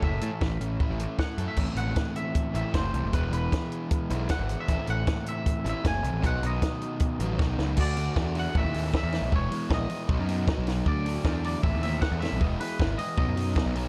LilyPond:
<<
  \new Staff \with { instrumentName = "Clean electric guitar" } { \time 4/4 \key a \lydian \tempo 4 = 155 e''2. fis''8. e''16~ | e''8 fis''4 e''4 e''8 c''4 | b'8 b'2~ b'8 fis''8. e''16~ | e''8 fis''4 e''4 e''8 gis''4 |
fis''8 dis''2. r8 | d''4 r8 fis''8 e''4 e''4 | cis''4 dis''2~ dis''8 r8 | d''4. d''8 e''8 e''8 fis''8 e''8 |
dis''8 b'4 dis''8 dis''4. r8 | }
  \new Staff \with { instrumentName = "Overdriven electric guitar" } { \time 4/4 \key a \lydian <a, a e' a'>8 e8 a8 cis'8 e'8 a8 e'8 a'8 | <a, e a c' e'>2~ <a, e a c' e'>8 <a, e a c' e'>8 <a, e a c' e'>4 | <e gis b e'>2~ <e gis b e'>8 <e gis b e'>8 <e gis b e'>4 | <a, e a c' e'>2~ <a, e a c' e'>8 <a, e a c' e'>8 <a, e a c' e'>4 |
<b, dis fis b dis'>2~ <b, dis fis b dis'>8 <b, dis fis b dis'>8 <b, dis fis b dis'>4 | <d a d' fis'>8 <d a d' fis'>8 <d a d' fis'>8 <d a d' fis'>8 <a, e a c' e'>8 <a, e a c' e'>8 <a, e a c' e'>8 <a, e a c' e'>8 | <e gis b e'>8 <e gis b e'>8 <e gis b e'>8 <e gis b e'>8 <b, fis b dis'>8 <b, fis b dis'>8 <b, fis b dis'>8 <b, fis b dis'>8 | <d fis a d'>8 <d fis a d'>8 <d fis a d'>8 <d fis a d'>8 <a, e a c' e'>8 <a, e a c' e'>8 <a, e a c' e'>8 <a, e a c' e'>8 |
<e gis b e'>8 <e gis b e'>8 <e gis b e'>8 <e gis b e'>8 <b, fis b dis'>8 <b, fis b dis'>8 <b, fis b dis'>8 <b, fis b dis'>8 | }
  \new Staff \with { instrumentName = "Picked electric bass" } { \clef bass \time 4/4 \key a \lydian fis,,8 a,16 r16 a,,8 a,,8 r16 a,,8 r8. fis,16 r16 | a,,16 r16 a,,8 r4. a,,16 r16 fis,,8 c,16 fis,,16 | e,,8 e,,8 r4. b,,8 r16 gis,,8 r16 | a,,16 r16 a,,8 r4. a,,16 r16 fis,,8 c,16 a,,16 |
b,,8 b,,8 r4. a,,8 b,,8 cis,8 | d,4 e,4 a,,16 dis,16 dis,8 r16 e,8 b,,16 | e,,8 r8 ais,,8 r8 b,,16 fis,4 b,,8. | d,4 e,4 a,,16 dis,16 dis,8 r16 e,8 b,,16 |
e,,8 r8 gis,,8 r8 b,,16 fis,4 b,,8. | }
  \new DrumStaff \with { instrumentName = "Drums" } \drummode { \time 4/4 bd8 hh8 <bd sn>8 hh8 bd8 hh8 <bd sn>8 hh8 | <cymc bd>8 hh8 <hh bd sn>8 hh8 <hh bd>8 hh8 <hh bd sn>8 hh8 | <hh bd>8 hh8 <hh bd sn>8 hh8 <hh bd>8 hh8 <hh bd sn>8 hh8 | <hh bd>8 hh8 <hh bd sn>8 hh8 <hh bd>8 hh8 <hh bd sn>8 hh8 |
<hh bd>8 hh8 <hh bd sn>8 hh8 <hh bd>8 hh8 <bd sn>8 sn8 | <cymc bd>8 hho8 <bd sn>8 hho8 bd8 hho8 <bd sn>8 <hho sn>8 | bd8 hho8 <bd sn>8 hho8 bd8 hho8 <bd sn>8 <hho sn>8 | bd8 hho8 <bd sn>8 hho8 bd8 hho8 <bd sn>8 <hho sn>8 |
bd8 hho8 <bd sn>8 hho8 bd8 hho8 <bd sn>8 hho8 | }
>>